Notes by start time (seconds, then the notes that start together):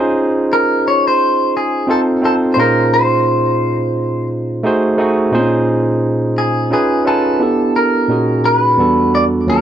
Already playing: C#4 D#4 F4 G#4 C5
0.53 A#4
0.88 C#5
1.07 C5
1.57 G#4
1.87 C4 D#4 F4 A4 C5
2.22 C4 D#4 F4 A4 C5
2.54 A#2 C#4 D#4 C5
2.58 F4 G#4 A#4 C5
2.94 C5
4.63 A3 D#4 F#4 G#4 C5
4.98 A3 D#4 F#4 G#4 D#5
5.32 A#2 C4 D#4 F4 G#4 C5
5.39 C#4
6.38 G#4
6.70 C#4 D#4 F4 G#4 B4
7.05 C#4 D#4 F4 A4 B4 G#5
7.40 B3 D4 E4 G4 A4
7.76 A#4
8.08 A#2 C#4 D#4 F#4 G#4
8.46 A#4
8.56 B4
8.77 E2 G3 B3 D4 F#4 A4
9.15 D5
9.46 D#2 F#3 A#3 C#4 F4 G#4 A#4